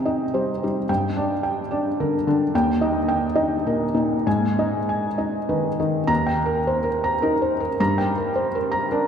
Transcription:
Already playing: C3 D#4 D#5 G5
0.05 D#4 D#5
0.34 G3 C5
0.63 G3 D#4
0.89 G2 G5
1.17 D4 D5
1.43 G5
1.71 D4 D5
2.00 D3 A#4
2.27 D3 D4
2.55 D#2 G5
2.81 D#4 D#5
3.08 G5
3.35 D#4 D#5
3.66 A#2 A#4
3.94 A#2 D#4
4.27 G#2 G#5
4.59 D#4 D#5
4.89 G#5
5.18 D#4 D#5
5.49 D#3 B4
5.80 D#3 D#4
6.07 D#2 A#5
6.27 G5
6.46 A#4
6.67 C5
6.84 A#4
7.04 A#5
7.22 D#4 A#4
7.42 C5
7.60 A#4
7.80 G2 A#5
7.98 G5
8.18 A#4
8.36 C5
8.55 A#4
8.72 A#5
8.92 D4 A#4

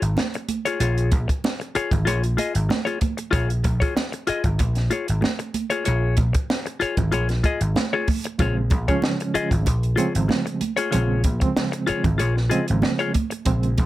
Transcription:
0.02 G#1, closed hi-hat
0.17 muted clean electric guitar stroke, snare, high conga
0.34 muted clean electric guitar stroke, closed hi-hat
0.49 closed hi-hat, high conga
0.65 F4 G#4 C#5, closed hi-hat
0.80 A#1 F4 G#4 C#5, closed hi-hat, muted conga
0.98 closed hi-hat
1.12 A#1, kick, closed hi-hat, muted conga
1.28 muted clean electric guitar stroke, kick, closed hi-hat
1.44 snare, high conga
1.60 muted clean electric guitar stroke, closed hi-hat
1.75 F4 G#4 C#5, muted slap bass stroke, closed hi-hat
1.91 G#1, muted clean electric guitar stroke, kick, closed hi-hat, low conga
2.05 A#1 F4 G#4 C#5, closed hi-hat, muted conga
2.23 muted clean electric guitar stroke, closed hi-hat
2.37 F4 G#4 D#5, closed hi-hat, muted conga
2.54 G#1, muted clean electric guitar stroke, closed hi-hat
2.69 muted clean electric guitar stroke, snare, high conga
2.85 F4 G#4 C#5, closed hi-hat
3.00 muted clean electric guitar stroke, kick, closed hi-hat, high conga
3.17 muted clean electric guitar stroke, closed hi-hat
3.31 A#1 F4 G#4 C#5, kick, closed hi-hat
3.49 muted clean electric guitar stroke, closed hi-hat
3.64 A#1, muted clean electric guitar stroke, kick, closed hi-hat, muted conga
3.80 F4 G#4 C#5, kick, closed hi-hat
3.96 muted clean electric guitar stroke, snare, high conga
4.12 muted clean electric guitar stroke, closed hi-hat
4.27 F4 G#4 D#5, muted slap bass stroke, closed hi-hat
4.44 G#1, muted clean electric guitar stroke, kick, closed hi-hat
4.59 A#1, muted clean electric guitar stroke, kick, closed hi-hat, muted conga
4.75 snare, closed hi-hat
4.91 F4 G#4 C#5, closed hi-hat, muted conga
5.08 G#1, muted clean electric guitar stroke, closed hi-hat
5.21 muted clean electric guitar stroke, snare, high conga
5.39 muted clean electric guitar stroke, closed hi-hat
5.54 closed hi-hat, high conga
5.70 F4 G#4 C#5, closed hi-hat
5.84 A#1 F4 G#4 C#5, closed hi-hat, muted conga
6.17 A#1, kick, closed hi-hat, muted conga
6.33 muted clean electric guitar stroke, kick, closed hi-hat
6.50 snare, high conga
6.66 muted clean electric guitar stroke, closed hi-hat
6.80 F4 G#4 C#5, muted slap bass stroke, closed hi-hat
6.97 G#1, kick, closed hi-hat, low conga
7.12 A#1 F4 G#4 C#5, closed hi-hat, muted conga
7.29 muted clean electric guitar stroke, snare, closed hi-hat
7.44 F4 G#4 D#5, kick, closed hi-hat, muted conga
7.61 G#1, muted clean electric guitar stroke, closed hi-hat
7.76 muted clean electric guitar stroke, snare, high conga
7.93 F4 G#4 C#5
8.08 kick, open hi-hat, high conga
8.24 muted clean electric guitar stroke, closed hi-hat
8.38 A#1 C#3 F3 G#3 C4 F4 G#4 C#5, kick, closed hi-hat, muted conga
8.57 muted clean electric guitar stroke
8.70 A#1, muted clean electric guitar stroke, kick, closed hi-hat, muted conga
8.87 C#3 F3 G#3 C#4 F4 G#4 C#5, kick, closed hi-hat
9.02 muted clean electric guitar stroke, snare, high conga
9.20 muted clean electric guitar stroke, closed hi-hat
9.34 F4 G#4 D#5, muted slap bass stroke, closed hi-hat
9.51 G#1, muted clean electric guitar stroke, kick, closed hi-hat
9.66 A#1, muted clean electric guitar stroke, kick, closed hi-hat, muted conga
9.83 closed hi-hat
9.96 C#3 F3 G#3 C4 F4 G#4 C#5, closed hi-hat, muted conga
10.15 G#1, closed hi-hat
10.28 muted clean electric guitar stroke, snare, high conga
10.46 muted clean electric guitar stroke, closed hi-hat
10.61 closed hi-hat, high conga
10.77 F4 G#4 C#5, closed hi-hat
10.91 A#1 C#3 F3 G#3 C4 F4 G#4 C#5, closed hi-hat
11.24 A#1, kick, closed hi-hat, muted conga
11.40 C#3 F3 G#3 C4, muted clean electric guitar stroke, kick, closed hi-hat
11.57 snare, high conga
11.72 muted clean electric guitar stroke, closed hi-hat
11.87 F4 G#4 C#5, muted slap bass stroke, closed hi-hat
12.04 G#1, muted clean electric guitar stroke, kick, closed hi-hat, low conga
12.18 A#1 F4 G#4 C#5, closed hi-hat, muted conga
12.36 muted clean electric guitar stroke, snare
12.50 C#3 F3 G#3 C4 F4 G#4 D#5, closed hi-hat, muted conga
12.67 G#1, muted clean electric guitar stroke, closed hi-hat
12.82 muted clean electric guitar stroke, snare, high conga
12.99 F4 G#4 C#5, closed hi-hat
13.13 muted clean electric guitar stroke, kick, closed hi-hat, high conga
13.30 muted clean electric guitar stroke, closed hi-hat
13.45 A#1 C#3 F3 G#3 C4, kick, closed hi-hat, muted conga
13.63 closed hi-hat
13.78 A#1, kick, closed hi-hat, muted conga

